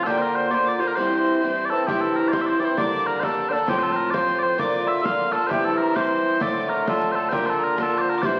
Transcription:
0.03 A#2 D3 A#3 F4 G4 A4 A5
0.11 G5
0.18 A#4 C5
0.34 C5 C6
0.51 A#2 D3 A#3 F4 D5 C6
0.55 C5
0.65 D5 D6
0.78 A#3 F4 C5 C6
0.82 D3 A#5
0.88 A#4
0.95 G2 E3 C4 E4 C5 C6 D6
1.42 G2 E3 C4 E4
1.65 D5
1.70 E3 C4 E4 A4 A5
1.87 G2 E3 C4 E4 G4 G5, bodhran
2.01 A4 A5
2.16 A#4 A#5
2.28 G2 C5 D5
2.33 E3 C4 E4 C6, bodhran
2.41 E5
2.47 C5 C6
2.60 E3 C4 E4 D5 C6
2.65 C5
2.77 G2 D3 A#3 D4 D5 D6, bodhran
3.06 A#4 A#5
3.20 G2 D3 A#3 A4 C5 A5, bodhran
3.25 D4
3.49 A#3 D4 A4 C5 A5
3.53 D3
3.67 A2 F3 C4 F4 G4 G5, bodhran
3.79 C5 A5
3.83 A4
3.92 C5
3.96 A#4
4.11 A2 F3 C4 F4 C5 D5 D6, bodhran
4.17 C6
4.39 D5 C6
4.43 C5
4.58 A#2 D3 A#3 F4 D5 D6, bodhran
4.87 E5 E6, bodhran
5.03 A#2 D3 A#3 F4 F5 F6, bodhran
5.31 D3 A#3 F4 A4 A5
5.47 G2 E3 C4 E4 G4 C5
5.51 G5, bodhran
5.65 A4 A5
5.77 A#4 A#5
5.94 G2 E3 C4 E4 C5 D6, bodhran
6.01 C6
6.40 A2 D3 A3 F4 D5 E6, bodhran
6.46 D6
6.68 A#4 A#5
6.85 A2 D3 A3 F4 A4 C6, bodhran
6.90 A5
7.12 A4 C5 A5
7.29 A#2 D3 C5 G5, bodhran
7.33 A#3 F4 G4
7.45 C5 A5
7.50 A4
7.59 A#5
7.63 A#4
7.76 A#2 D3 A#3 F4 A5 C6, bodhran
7.82 A4
7.98 C5 D5
8.10 A#4
8.18 D6
8.22 G2 E3 C4 E4 C5 D5 D6, bodhran
8.27 C6

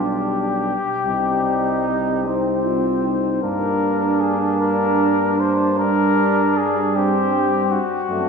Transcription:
Already playing: B1 G3 D4 G4
1.05 C2 G3 C4 D#4
2.25 C4 D#4
2.66 F4
3.05 D#4
3.42 G2 A#3 D4 A#4
4.20 G#4
4.61 A#4
5.40 C5
5.79 G3 D4 A#4
6.57 G#4
6.96 C4 G4
7.72 F#4
8.10 F#2 A3 C4 D4

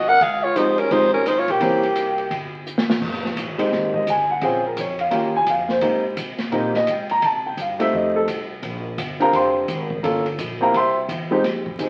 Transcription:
Already playing: G#1 D#5
0.08 A#4 F#5
0.21 C#2 G#4 F5, kick, ride
0.43 F4 C#5
0.56 F3 G#3 C4 D#4 G4 C5, hi-hat pedal, ride
0.78 C#4 A#4, ride
0.91 G#1 F3 G#3 C4 D#4 G4 C5, kick, ride
1.14 C#4 A#4
1.26 D#4 C5, cross-stick, hi-hat pedal, ride
1.39 F4 C#5
1.48 B1 A#3 G4, ride
1.61 C2 E3 A#3 C4 C#4 G4, kick, ride
1.83 ride
1.96 hi-hat pedal, ride
2.18 ride
2.30 G1, kick, ride
2.66 hi-hat pedal
2.78 snare
2.90 snare
3.01 F1, kick, crash
3.13 snare
3.25 snare
3.37 A1, kick, hi-hat pedal, ride
3.49 G#1
3.58 F1 G#3 C4 D#4 G4, ride
3.72 G#1, kick, snare
3.94 D#5, kick
4.07 G1 G#5, kick, hi-hat pedal, ride
4.31 F#5
4.41 A#1 C4 C#4 F4 G#4 G5, kick, ride
4.66 A#4
4.76 F2, kick, hi-hat pedal, ride
4.80 C#5
4.99 F5, ride
5.11 D#2 A#3 C#4 F4 G4, kick, ride
5.15 G5
5.36 G#5
5.46 F2 F5, kick, hi-hat pedal, ride
5.69 C5, snare
5.81 G#2 A#3 C4 D#4 G4, kick, ride
6.17 C3, kick, hi-hat pedal, ride
6.38 snare, ride
6.52 A#2 A#3 C4 D#4 G4, kick, ride
6.56 C5
6.74 D#5, snare
6.87 G#2 G5, kick, hi-hat pedal, ride
7.09 A#5, ride
7.22 C3 A5, kick, ride
7.46 G5
7.57 G2, kick, hi-hat pedal, ride
7.61 F5
7.79 A3 C4 D#4 G4 E5, ride
7.93 F2 D#5, kick
8.16 A4
8.27 C2, kick, hi-hat pedal, ride
8.62 A#1, kick, ride
8.98 G1, kick, hi-hat pedal, ride
9.20 C4 D4 F4 G4 A#4 F5 G5 A#5, ride
9.33 F1 C5 F5 G5 C6, kick, ride
9.68 G#1, kick, hi-hat pedal, ride
9.90 kick
10.03 G1 A#3 C#4 F4 A4, kick, ride
10.26 ride
10.38 A#1, kick, hi-hat pedal, ride
10.60 A#3 C4 E4 G4 A#4 F5 G5 A#5
10.74 C2 C5 E5 G5 C6, kick, ride
11.08 E2, kick, hi-hat pedal, ride
11.31 G#3 C4 D#4 G4
11.44 F2, kick, snare, ride
11.66 kick
11.79 G2 C4 D#4 G4 G#4, kick, hi-hat pedal, ride

